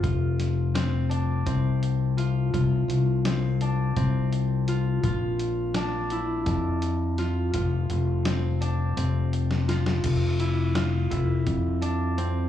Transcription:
<<
  \new Staff \with { instrumentName = "Harp" } { \time 7/8 \key bes \lydian \tempo 4 = 84 f'4 c'8 d'8 c'4 f'8 | f'4 c'8 d'8 c'4 f'8 | f'4 d'8 e'8 d'4 f'8 | f'4 c'8 d'8 c'4 f'8 |
r8 e'8 f'8 e'4 d'8 c'8 | }
  \new Staff \with { instrumentName = "Fingered electric bass" } { \clef bass \time 7/8 \key bes \lydian f,,2 c,4. | c,8 c,4. c,4. | bes,,2 f,4. | f,,8 f,,4. f,,4. |
f,,4. f,,8 f,4. | }
  \new DrumStaff \with { instrumentName = "Drums" } \drummode { \time 7/8 <hh bd>8 <hh sn>8 <hh sn>8 hh8 <hh bd>8 hh8 hh8 | <hh bd>8 hh8 <hh sn>8 hh8 <hh bd>8 hh8 hh8 | <hh bd>8 hh8 <hh sn>8 hh8 <hh bd>8 hh8 <hh sn>8 | <hh bd>8 hh8 <hh sn>8 hh8 hh8 hh16 sn16 <hh sn>16 sn16 |
<cymc hh bd>8 hh8 <hh sn>8 <hh bd>8 <hh bd>8 hh8 hh8 | }
>>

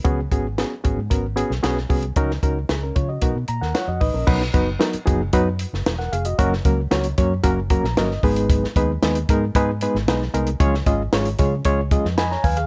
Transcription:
<<
  \new Staff \with { instrumentName = "Reed electric piano" } { \time 4/4 \key des \mixolydian \tempo 4 = 114 << { r1 | r4 aes'16 <des' bes'>16 <f' des''>16 <ges' ees''>8 r16 bes''16 <bes' ges''>16 <f' des'' ges''>16 <ges' ees''>16 <ees' ces'' ees''>16 <des' bes'>16~ | <des' bes'>16 r2. <bes' ges''>16 <aes' f''>16 <ges' ees''>16~ | <ges' ees''>16 r2 r16 bes''8 ees''4 |
r1 | r2. <ees'' aes'' ces'''>16 <des'' bes''>16 <ces'' f'' aes''>16 <aes' f''>16 | } \\ { <ces' des' ges' aes'>8 <ces' des' ges' aes'>8 <ces' des' ges' aes'>8 <ces' des' ges' aes'>8 <ces' des' ges' bes'>8 <ces' des' ges' aes'>8 <ces' des' ges' aes'>8 <ces' des' ges' aes'>8 | <des' ees' ges' bes'>8 <des' ees' ges' bes'>8 r4 <ces' ees' ges' bes'>8 r4. | <ges ces' ees' ges' ces''>8 <ges ces' ees' ges' ces''>8 <ges ces' ees' ges' bes'>8 <ges ces' ees' ges' aes'>8 <ges ces' ees' ges' ces''>8 r4. | <ges bes des' ges' bes'>8 <ges bes des' ges' bes'>8 <ges bes des' ges' des''>8 <ges bes des' ges' des''>8 <ges bes des' ges' bes'>8 <ges bes des' ges' bes'>8 <ges bes des' ges' bes'>8 <aes ces' ees' aes' ces''>8~ |
<aes ces' ees' aes' ces''>8 <aes ces' ees' aes' ces''>8 <aes ces' ees' aes' ces''>8 <aes ces' ees' aes' bes'>8 <aes ces' ees' aes' ces''>8 <aes ces' ees' aes' ces''>8 <aes ces' ees' aes' ces''>8 <aes ces' ees' aes' bes'>8 | <aes des' f' aes' des''>8 <aes des' f' aes' ees''>8 <aes des' f' aes' des''>8 <aes des' f' aes' des''>8 <aes des' f' aes' des''>8 <aes des' f' aes' ees''>8 r4 | } >> }
  \new Staff \with { instrumentName = "Fingered electric bass" } { \clef bass \time 4/4 \key des \mixolydian des,8 aes,,8. r16 aes,,16 aes,16 aes,,8. ces,16 ces,8 c,8 | des,8 des,8 des,8 des8 ces,16 ces16 bes,16 ees,16 r16 f,16 a,,16 bes,,16 | ces,8 ges,,8 r8 ges,,8 ges,8. ges,,16 fes,,8 f,,8 | ges,,8 des,8 des,8 ges,8 ges,,8. bes,,16 g,,8 aes,,8~ |
aes,,8 ees,8 ees,8 aes,8 aes,8. aes,,16 ces,8 c,8 | des,8 aes,,8 aes,,8 des8 des,8. f,8. ees,8 | }
  \new DrumStaff \with { instrumentName = "Drums" } \drummode { \time 4/4 <hh bd>8 <hh bd>8 <hh sn>8 <hh bd>8 <hh bd>8 hh16 sn16 <hh sn>16 sn16 <hho bd>16 hh16 | <hh bd>16 sn16 <hh bd>8 <hh sn>8 <hh bd>8 <hh bd>8 hh16 sn16 <hh sn>8 <hho bd>8 | <cymc bd>16 sn16 <hh bd>8 <hh sn>16 hh16 <hh bd>8 <hh bd>8 hh16 sn16 <hh sn>16 sn16 hh16 hh16 | <hh bd>16 sn16 <hh bd>8 <hh sn>16 hh16 <hh bd>8 <hh bd>8 <hh bd>16 sn16 <hh sn>16 sn16 <hho bd>16 hh16 |
<hh bd>16 sn16 <hh bd>8 <hh sn>16 hh16 <hh bd>8 <hh bd>8 hh16 sn16 <hh sn>16 sn16 hh16 hh16 | <hh bd>16 sn16 <hh bd>8 <hh sn>16 hh16 <hh bd>8 <hh bd>8 <hh bd>16 sn16 <hh sn>16 sn16 <hho bd>16 hh16 | }
>>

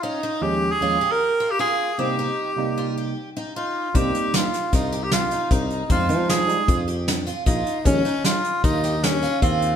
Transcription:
<<
  \new Staff \with { instrumentName = "Tenor saxophone" } { \time 5/4 \key c \phrygian \tempo 4 = 153 ees'4 g'8. aes'4 bes'4 g'16 aes'4 | g'2. r4 f'4 | g'4 f'4 ees'8. g'16 f'4 ees'4 | f'4 aes'4. r4. ees'4 |
des'4 f'4 ees'4 des'4 c'4 | }
  \new Staff \with { instrumentName = "Twelve-string acoustic guitar" } { \time 5/4 \key c \phrygian des'8 ees'4 r8 f'8 g'4 f'8 f'4 | c'8 ees'4 r8 f'8 g'4 ees'8 ees'4 | c'8 ees'4 r8 f'8 g'4 ees'8 ees'4 | c'8 ees'4 r8 f'8 g'4 f'8 f'4 |
des'8 ees'4 r8 f'8 g'4 f'8 f'4 | }
  \new Staff \with { instrumentName = "Tine electric piano" } { \clef bass \time 5/4 \key c \phrygian r4 <ees, f aes des'>8 r8 <ees, f aes des'>8 r2 r8 | <c g bes ees'>8 r4 <c g bes ees'>4. r2 | <g bes ees'>4. r2. r8 | <g aes ees'>4. <g aes ees'>8 r2. |
<f aes des'>8 r1 r8 | }
  \new Staff \with { instrumentName = "Fretless electric bass" } { \clef bass \time 5/4 \key c \phrygian r1 r4 | r1 r4 | c,8 r4. c,2 c,4 | f,8 f4. f,2 bes,,8 r8 |
ees,8 r4. ees,2 ees,4 | }
  \new DrumStaff \with { instrumentName = "Drums" } \drummode { \time 5/4 r4 r4 r4 r4 r4 | r4 r4 r4 r4 r4 | <hh bd>8 hh8 <hh sn>8 <hh sn>8 <hh bd sn>8 hh8 <hh sn>8 hh8 <hh bd>8 hh8 | <hh bd>8 hh8 <hh sn>8 hh8 <hh bd>8 hh8 <hh sn>8 hh8 <hh bd>8 hh8 |
<hh bd>8 <hh sn>8 <hh sn>8 hh8 <hh bd sn>8 <hh sn>8 <hh sn>8 <hh sn>8 <hh bd>8 hh8 | }
>>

